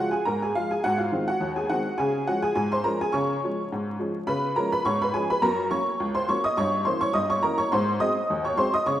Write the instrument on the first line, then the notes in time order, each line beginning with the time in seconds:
honky-tonk piano
Already playing: F3 G#3 F4 F#4 F#5
0.11 G#4 G#5
0.25 G#2 A#4 A#5
0.42 G#4 G#5
0.55 F3 G#3 F4 F5
0.71 G#4 G#5
0.84 G#2 F#4 F#5
0.98 F4 F5
1.12 D#3 G#3 C4
1.28 F#4 F#5
1.41 D#2
1.56 G#4 G#5
1.70 D#3 G#3 C4 F#4 F#5
1.98 C#3 G#4 G#5
2.27 F3 G#3 C#4 F#4 F#5
2.42 G#4 G#5
2.55 G#2 G#4 G#5
2.72 C5 C6
2.84 F3 G#3 C#4 A#4 A#5
3.01 G#4 G#5
3.12 C#3 C#5 C#6
3.44 F3 G#3 C#4
3.72 G#2
3.99 F3 G#3 C#4
4.27 C#3 B4 B5
4.56 F3 G#3 C#4 A#4 A#5
4.72 B4 B5
4.85 G#2 C#5 C#6
5.02 B4 B5
5.14 F3 G#3 C#4 G#4 G#5
5.30 B4 B5
5.42 F#2 A#4 A#5
5.71 F#3 A#3 C#4 C#5 C#6
6.00 C#2
6.15 C5 C6
6.29 F#3 A#3 C#4 C#5 C#6
6.44 D#5 D#6
6.57 G2 C#5 C#6
6.85 E3 A#3 C#4 C5 C6
7.01 C#5 C#6
7.13 G2 D#5 D#6
7.30 C#5 C#6
7.43 E3 A#3 C#4 A#4 A#5
7.58 C#5 C#6
7.72 G#2 C5 C6
8.00 F#3 G#3 C4 D#5 D#6
8.30 D#2
8.45 C#5 C#6
8.57 F#3 G#3 C4 C5 C6
8.74 D#5 D#6
8.86 C#3 C#5 C#6